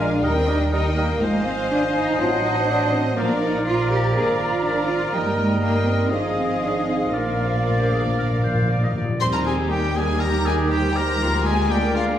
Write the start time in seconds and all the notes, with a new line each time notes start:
Already playing: A#1 G#3 F4 A#4 F5 G#5
0.00 D4 A#4 F5
0.22 D#2 G3 D#4 A#4 D#5 G5 A#5
0.37 C4
0.47 G3 D4 A#4 D#5 A#5
0.72 G3 D#4 A#4 D#5 G5 A#5
0.97 G3 A#3 A#4 D#5 A#5
1.20 G#1 F3 G#3 D#4 C5 D#5 F5 G#5
1.35 A#3
1.46 C4
1.71 D4
1.95 D#4
2.18 A1 F#3 C4 F4 C5 D#5 F#5 A5
2.43 D#4
2.67 D4
2.92 C4
3.16 A#1 F3 A#3 D4 A#4 D5 F5 A#5
3.29 D4
3.41 D#4
3.65 F4 A#4 D5 F5
3.91 G4
4.14 G#1 A#3 D4 G#4 A#4 D5 F5
4.39 F4
4.64 D4 A#4 D5 F5
4.88 F4
5.13 G1 F3 G3 A#3 D#4 A#4 D#5 G5
5.26 G3
5.38 G#3
5.62 A#3 D#4 A#4 D#5 G5
5.86 C4
6.10 G#1 F3 D4 D#4 G#4 D#5 F5
6.24 D#4
6.36 C4
6.62 D4
6.88 C4
7.13 A#1 A#2 F3 A#3 D4 A#4 D5 F5
7.29 A#2
7.37 A#2
7.45 A#2
7.52 A#2
7.66 A#2 F4
7.76 A#2 G4
7.84 A#2
7.92 A#2 G#4
8.00 A#2
8.07 A#2
8.15 A#2 A#4
8.23 A#2
8.31 A#2
8.38 A#2
8.44 A#2 C5
8.54 A#2
8.62 A#2
8.69 A#2 D5
8.77 A#2
8.83 A#2 D#5
8.93 A#2 D5
9.01 A#2
9.08 A#2
9.19 D#2 G3 C4 D#4 G4 C5 C6
9.33 A#4 A#5
9.44 G#4 G#5
9.70 G3 A#3 G4 G5
9.94 G#4 G#5
10.20 D#3 G3 G4 A#4 A#5
10.45 G#4 G#5
10.70 G4 C5 G5
10.95 A#4 A#5
11.20 D2 F3 G#3 A#3 F4 A#4
11.45 G#3 G#4 G#5
11.70 A#3 F4 G4 D5 G5
11.94 F4 F5